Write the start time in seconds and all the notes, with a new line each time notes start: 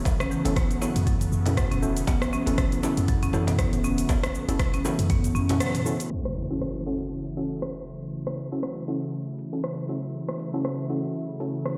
Already playing: C#3 E3 F#3 A3 B3 C#4 E4 F#4 A4
0.05 F#1 F#3, kick, closed hi-hat, djembe slap, djembe tone, cabasa
0.20 C#4, cross-stick, cabasa
0.31 E3, cabasa
0.45 F#1 C#4 E4 F#4 A4, closed hi-hat, djembe tone, cabasa
0.56 B3, kick, cross-stick, closed hi-hat, mid tom, cabasa
0.71 closed hi-hat, cabasa
0.81 C#4 E4 F#4 A4, djembe slap, djembe tone, cabasa
0.96 F#2, closed hi-hat, cabasa
1.07 F#3, kick, closed hi-hat, cabasa
1.21 closed hi-hat, cabasa
1.32 F#2, cabasa
1.46 C#4 E4 F#4 A4, closed hi-hat, mid tom, djembe slap, cabasa
1.57 F#3, kick, cross-stick, closed hi-hat, cabasa
1.71 E1 C#4, closed hi-hat, mid tom, cabasa
1.82 E3 C#4 E4 F#4 A4, cabasa
1.97 closed hi-hat, cabasa
2.07 F#1 B3, kick, closed hi-hat, djembe slap, djembe tone, cabasa
2.22 cross-stick, cabasa
2.33 C#4, cabasa
2.46 F#1 C#4 E4 F#4 A4, closed hi-hat, djembe tone, cabasa
2.58 F#3, kick, cross-stick, closed hi-hat, mid tom, cabasa
2.72 closed hi-hat, cabasa
2.83 C#4 E4 F#4 A4, djembe slap, djembe tone, cabasa
2.97 F#2, closed hi-hat, cabasa
3.08 F#3, kick, closed hi-hat, mid tom, cabasa
3.23 C#4, closed hi-hat, cabasa
3.33 F#2 E3 C#4 E4 F#4 A4, djembe slap, cabasa
3.47 closed hi-hat, mid tom, djembe slap, cabasa
3.59 B3, kick, cross-stick, closed hi-hat, cabasa
3.73 E1, closed hi-hat, cabasa
3.84 C#4, cabasa
3.98 closed hi-hat, cabasa
4.09 F#1 F#3, kick, closed hi-hat, djembe slap, djembe tone, cabasa
4.23 cross-stick, closed hi-hat, cabasa
4.35 cabasa
4.48 F#1 C#4 E4 F#4 A4, closed hi-hat, djembe tone, cabasa
4.59 F#3, kick, cross-stick, closed hi-hat, mid tom, cabasa
4.74 C#4, closed hi-hat, cabasa
4.85 E3 C#4 E4 F#4 A4, djembe slap, djembe tone, cabasa
4.99 F#2, closed hi-hat, cabasa
5.10 B3, kick, closed hi-hat, cabasa
5.24 closed hi-hat, cabasa
5.35 F#2 C#4, cabasa
5.49 C#4 E4 F#4 A4, closed hi-hat, mid tom, djembe slap, cabasa
5.60 F#3, cross-stick, closed hi-hat, cabasa
5.75 closed hi-hat, mid tom, cabasa
5.86 C#4 E4 F#4 A4, cabasa
6.00 closed hi-hat, cabasa
6.11 C#3 E3 F#3 A3 E4, impact
6.25 cross-stick
6.36 open hi-hat
6.50 C#4 E4 F#4 A4
6.61 cross-stick
6.86 C#4 E4 F#4 A4, open hi-hat, cabasa
7.01 cabasa
7.37 C#4 E4 F#4 A4, open hi-hat, cabasa
7.52 cabasa
7.62 cross-stick
7.87 open hi-hat, cabasa
8.02 cabasa
8.13 cabasa
8.27 cross-stick
8.38 open hi-hat, cabasa
8.52 C#4 E4 F#4 A4, cabasa
8.63 cross-stick
8.88 C#4 E4 F#4 A4, open hi-hat, cabasa
9.03 cabasa
9.14 cabasa
9.39 open hi-hat, cabasa
9.53 C#4 E4 F#4 A4, cabasa
9.64 cross-stick
9.89 C#4 E4 F#4 A4, open hi-hat, cabasa
10.04 cabasa
10.15 cabasa
10.29 cross-stick
10.39 open hi-hat, cabasa
10.54 C#4 E4 F#4 A4, cabasa
10.65 cross-stick
10.90 C#4 E4 F#4 A4, open hi-hat, cabasa
11.05 cabasa
11.15 cabasa
11.40 C#4 E4 F#4 A4, open hi-hat, cabasa
11.55 cabasa
11.66 cross-stick, cabasa